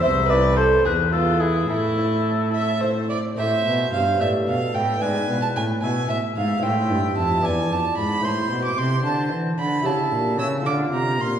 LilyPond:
<<
  \new Staff \with { instrumentName = "Violin" } { \time 6/8 \key a \minor \tempo 4. = 74 c''8 b'8 a'8 gis'8 f'8 e'8 | e'4. e''8 c''8 d''8 | e''4 f''8 e''8 f''8 g''8 | gis''8. a''16 gis''8 gis''8 e''8 f''8 |
g''4 a''8 gis''8 a''8 b''8 | c'''8. d'''16 c'''8 a''8 r8 b''8 | \key d \minor a''4 e'''8 d'''8 bes''8 c'''8 | }
  \new Staff \with { instrumentName = "Oboe" } { \time 6/8 \key a \minor e''8 d''8 c''8 b'8 a'8 gis'8 | a'2~ a'8 r8 | c''4. a'4. | b'4. e''4.~ |
e''4. d''4. | c''2~ c''8 r8 | \key d \minor e''4. f''4. | }
  \new Staff \with { instrumentName = "Lute" } { \time 6/8 \key a \minor r8 <a c' e'>4 r8 <gis b e'>4 | r8 <a c' e'>4. <a c' e'>4 | <a c' a'>4. <b d' d''>4. | <b e' d''>2. |
<c' e' c''>4. <b e' d''>4. | <a e' c''>2. | \key d \minor <a e' g'>4. <a f' a'>4. | }
  \new Staff \with { instrumentName = "Lute" } { \clef bass \time 6/8 \key a \minor r4. e,4. | a,2~ a,8 r8 | a,8 b,8 g,8 a,8 b,8 a,8 | gis,8 b,8 a,8 b,8 a,8 gis,8 |
a,8 g,8 f,8 e,8 f,8 gis,8 | a,8 b,8 c8 d8 e8 d8 | \key d \minor cis8 bes,8 cis8 d8 c8 bes,8 | }
  \new Staff \with { instrumentName = "Cello" } { \clef bass \time 6/8 \key a \minor c,4. e,4. | a,2~ a,8 r8 | a,8 b,8 g,8 a,8 b,8 a,8 | gis,8 b,8 a,8 b,8 a,8 gis,8 |
a,8 g,8 f,8 e,8 f,8 gis,8 | a,8 b,8 c8 d8 e8 d8 | \key d \minor cis8 bes,8 cis8 d8 c8 bes,8 | }
>>